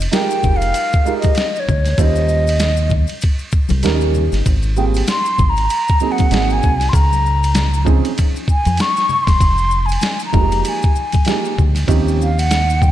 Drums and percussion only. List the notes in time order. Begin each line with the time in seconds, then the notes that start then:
0.00 ride, maracas
0.13 snare, hi-hat pedal, ride, high conga, maracas
0.31 maracas
0.43 kick, high conga, low conga, maracas
0.62 ride, maracas
0.74 ride, maracas
0.93 kick, maracas
1.06 maracas
1.22 kick, ride, high conga, maracas
1.35 snare, hi-hat pedal, ride, maracas
1.56 maracas
1.69 kick, low conga, maracas
1.85 snare, ride, maracas
1.98 kick, ride, maracas
2.16 maracas
2.29 maracas
2.47 ride, maracas
2.59 snare, hi-hat pedal, ride, high conga, maracas
2.77 maracas
2.90 kick, high conga, low conga, maracas
3.07 ride, maracas
3.21 kick, ride, maracas
3.39 maracas
3.52 kick, maracas
3.69 ride, high conga, maracas
3.83 snare, hi-hat pedal, ride, maracas
4.01 maracas
4.14 low conga, maracas
4.32 snare, ride, maracas
4.46 kick, ride, maracas
4.63 maracas
4.77 maracas
4.94 ride, maracas
5.07 snare, hi-hat pedal, ride, high conga, maracas
5.26 maracas
5.38 kick, high conga, low conga, maracas
5.56 ride, maracas
5.70 ride, maracas
5.88 kick, maracas
6.00 maracas
6.18 kick, ride, high conga, maracas
6.31 snare, hi-hat pedal, ride, maracas
6.50 maracas
6.63 kick, low conga, maracas
6.80 snare, ride, maracas
6.93 kick, ride, maracas
7.13 high conga, maracas
7.26 maracas
7.44 ride, maracas
7.55 snare, hi-hat pedal, ride, high conga, low conga, maracas
7.74 maracas
7.87 kick, high conga, low conga, maracas
8.05 ride, maracas
8.18 kick, ride, maracas
8.36 maracas
8.48 kick, maracas
8.65 ride, high conga, maracas
8.77 snare, hi-hat pedal, ride, maracas
8.97 snare, maracas
9.09 low conga, maracas
9.27 kick, snare, ride, high conga, maracas
9.41 kick, ride, maracas
9.58 maracas
9.71 maracas
9.89 ride, maracas
10.01 snare, hi-hat pedal, ride, high conga, maracas
10.20 maracas
10.33 kick, high conga, low conga, maracas
10.52 ride, maracas
10.65 ride, maracas
10.82 kick, maracas
10.95 maracas
11.12 kick, ride, high conga, maracas
11.25 snare, hi-hat pedal, ride, maracas
11.45 maracas
11.58 kick, low conga, maracas
11.75 snare, ride, maracas
11.88 kick, ride, maracas
12.08 maracas
12.21 maracas
12.39 ride, maracas
12.51 snare, hi-hat pedal, ride, high conga, maracas
12.70 maracas
12.82 kick, high conga, low conga, maracas